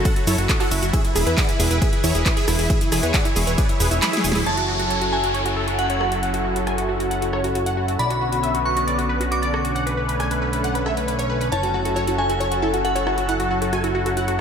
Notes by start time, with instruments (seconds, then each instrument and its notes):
Already playing: analog synth pad F#3 C#4 E4 A4
0.05 synth pluck F#4, supersaw synth A4 F#5, kick, closed hi-hat, ride, shaker
0.16 supersaw synth F#4, closed hi-hat
0.27 analog synth bass F#2, synth pluck E4, supersaw synth A4 C#5, open hi-hat, shaker
0.38 analog synth bass F#1, supersaw synth F#4, synth pluck F#4, closed hi-hat, shaker
0.49 supersaw synth F#4, synth pluck A4, kick, cross-stick, clap, closed hi-hat, ride, shaker
0.60 synth pluck F#4, supersaw synth A4 F#5, clap, closed hi-hat
0.71 analog synth bass F#1, synth pluck E4, supersaw synth F#4, open hi-hat, shaker
0.82 analog synth bass F#1, supersaw synth F#4, synth pluck F#4, closed hi-hat, shaker
0.93 analog synth pad E3 G#4 B4, synth pluck E4, supersaw synth G#4 E5, kick, closed hi-hat, ride, shaker
1.04 supersaw synth E4, closed hi-hat
1.15 analog synth bass E1, supersaw synth E4, synth pluck G#4, cross-stick, open hi-hat, shaker
1.26 analog synth bass E2, supersaw synth E4, synth pluck B4, closed hi-hat, shaker
1.37 synth pluck G#4, supersaw synth D5 F#5, kick, clap, closed hi-hat, ride, shaker
1.49 supersaw synth E4, synth pluck E4, closed hi-hat, shaker
1.60 analog synth bass E1, supersaw synth E4, synth pluck G#4, open hi-hat, shaker
1.71 analog synth bass E1, supersaw synth E4, synth pluck B4, closed hi-hat, shaker
1.82 synth pluck G#4, supersaw synth G#4 E5, kick, closed hi-hat, ride, shaker
1.93 supersaw synth E4, closed hi-hat
2.04 analog synth bass E2, supersaw synth E4 C#5, synth pluck E4, open hi-hat, shaker
2.15 analog synth bass E1, supersaw synth E4, synth pluck G#4, closed hi-hat, shaker
2.26 supersaw synth E4, synth pluck B4, kick, clap, closed hi-hat, ride, shaker
2.37 synth pluck G#4, supersaw synth G#4 E5, closed hi-hat
2.48 analog synth bass E1, synth pluck E4, supersaw synth E4, cross-stick, open hi-hat, shaker
2.59 analog synth bass E1, supersaw synth E4, synth pluck G#4, open hi-hat, shaker
2.70 synth pluck E4, supersaw synth G#4 E5, analog synth pad C#5, kick, closed hi-hat, ride, shaker
2.81 supersaw synth E4, closed hi-hat, shaker
2.92 analog synth bass E1, supersaw synth E4, synth pluck G#4, cross-stick, open hi-hat, shaker
3.03 analog synth bass E2, supersaw synth E4, synth pluck B4, closed hi-hat, shaker
3.14 synth pluck G#4, supersaw synth D5 F#5, kick, cross-stick, clap, closed hi-hat, ride, shaker
3.25 supersaw synth E4, synth pluck E4, closed hi-hat, shaker
3.36 analog synth bass E1, supersaw synth E4, synth pluck G#4, open hi-hat, shaker
3.47 analog synth bass E1, supersaw synth E4, synth pluck B4, closed hi-hat, shaker
3.58 synth pluck G#4, supersaw synth B4 D5, kick, closed hi-hat, ride, shaker
3.69 supersaw synth E4, closed hi-hat
3.80 analog synth bass E1, supersaw synth G#4 B4, synth pluck E5, open hi-hat, shaker
3.91 analog synth bass E1, supersaw synth E4, synth pluck E5, closed hi-hat, shaker
4.02 supersaw synth E4, synth pluck B5, snare, clap, closed hi-hat, ride, shaker
4.13 supersaw synth E4 G#4, synth pluck E4, snare, closed hi-hat, shaker
4.24 analog synth bass E1, supersaw synth E4, synth pluck G#5, open hi-hat, shaker
4.32 analog synth bass D1, supersaw synth E4, synth pluck G#4, snare, open hi-hat, shaker
4.46 analog synth bass F#1, analog synth pad F#3 C#4 E4 A4, supersaw synth C#5, synth bell A5, closed hi-hat, downlifter
4.57 supersaw synth F#4, closed hi-hat
4.68 supersaw synth F#4
4.79 supersaw synth F#4, closed hi-hat
4.90 supersaw synth C#5, closed hi-hat
5.01 supersaw synth F#4, closed hi-hat
5.12 supersaw synth F#4, synth bell G#5
5.23 supersaw synth F#4, closed hi-hat
5.34 supersaw synth C#5, closed hi-hat
5.45 supersaw synth F#4, closed hi-hat
5.56 supersaw synth A4
5.67 supersaw synth F#4, closed hi-hat
5.79 supersaw synth F#4, synth bell F#5, closed hi-hat
5.90 supersaw synth C#5, closed hi-hat
6.01 supersaw synth F#4, cross-stick
6.12 supersaw synth F#4, closed hi-hat
6.23 supersaw synth F#5, closed hi-hat
6.34 supersaw synth F#4, closed hi-hat
6.45 supersaw synth F#4
6.56 supersaw synth F#4, closed hi-hat
6.67 supersaw synth G#5, cross-stick, closed hi-hat
6.78 supersaw synth F#4, closed hi-hat
6.89 supersaw synth F#4
7.00 supersaw synth F#4, closed hi-hat
7.11 supersaw synth F#5, closed hi-hat
7.22 supersaw synth F#4, closed hi-hat
7.33 supersaw synth C#5, cross-stick
7.44 supersaw synth F#4, closed hi-hat
7.55 supersaw synth F#4, closed hi-hat
7.66 supersaw synth F#5, closed hi-hat
7.77 supersaw synth F#4
7.88 supersaw synth F#4, closed hi-hat
7.99 analog synth bass B1, analog synth pad D3 B3 C#4, supersaw synth D5, synth bell B5, closed hi-hat
8.10 supersaw synth F#4, closed hi-hat
8.21 supersaw synth F#4
8.32 supersaw synth F#4, closed hi-hat
8.43 supersaw synth E5, closed hi-hat
8.54 supersaw synth F#4, closed hi-hat
8.65 supersaw synth F#4, synth bell C#6
8.76 supersaw synth F#4, closed hi-hat
8.87 supersaw synth D5, closed hi-hat
8.98 supersaw synth F#4, closed hi-hat
9.09 supersaw synth B4
9.20 supersaw synth F#4, closed hi-hat
9.31 supersaw synth F#4, synth bell D6, closed hi-hat
9.42 supersaw synth D5, closed hi-hat
9.54 supersaw synth F#4, cross-stick
9.64 supersaw synth F#4, closed hi-hat
9.75 analog synth pad A3, supersaw synth F#5, closed hi-hat
9.86 supersaw synth B4, closed hi-hat
9.97 supersaw synth B4
10.08 supersaw synth B4, closed hi-hat
10.20 supersaw synth G#5, cross-stick, closed hi-hat
10.31 supersaw synth B4, closed hi-hat
10.42 supersaw synth B4
10.53 supersaw synth B4, closed hi-hat
10.64 supersaw synth F#5, closed hi-hat
10.75 supersaw synth B4, closed hi-hat
10.86 supersaw synth E5, cross-stick
10.97 supersaw synth B4, closed hi-hat
11.08 supersaw synth B4, closed hi-hat
11.19 supersaw synth C#5, closed hi-hat
11.30 supersaw synth B4
11.41 supersaw synth B4, closed hi-hat
11.52 analog synth bass F#1, analog synth pad F#3 E4 A4, synth pluck E4, supersaw synth C#5, synth bell A5, closed hi-hat
11.63 supersaw synth F#4, closed hi-hat
11.74 supersaw synth F#4, synth pluck F#4
11.85 supersaw synth F#4, synth pluck A4, closed hi-hat
11.96 synth pluck F#4, supersaw synth C#5, closed hi-hat
12.07 synth pluck E4, supersaw synth F#4, closed hi-hat
12.18 supersaw synth F#4, synth pluck F#4, synth bell G#5
12.29 supersaw synth F#4, synth pluck A4, closed hi-hat
12.40 synth pluck F#4, supersaw synth C#5, closed hi-hat
12.51 supersaw synth F#4, closed hi-hat
12.62 synth pluck E4, supersaw synth A4
12.73 supersaw synth F#4, synth pluck F#4, closed hi-hat
12.84 supersaw synth F#4, synth pluck A4, synth bell F#5, closed hi-hat
12.95 synth pluck F#4, supersaw synth C#5, closed hi-hat
13.07 synth pluck E4, supersaw synth F#4, cross-stick
13.17 supersaw synth F#4, synth pluck F#4, closed hi-hat
13.28 synth pluck E4, supersaw synth F#5, closed hi-hat
13.40 supersaw synth F#4, closed hi-hat
13.51 supersaw synth F#4, synth pluck F#4
13.62 supersaw synth F#4, synth pluck A4, closed hi-hat
13.73 synth pluck F#4, supersaw synth G#5, cross-stick, closed hi-hat
13.84 synth pluck E4, supersaw synth F#4, closed hi-hat
13.95 supersaw synth F#4, synth pluck F#4
14.06 supersaw synth F#4, synth pluck A4, closed hi-hat
14.17 synth pluck F#4, supersaw synth F#5, closed hi-hat
14.28 supersaw synth F#4, closed hi-hat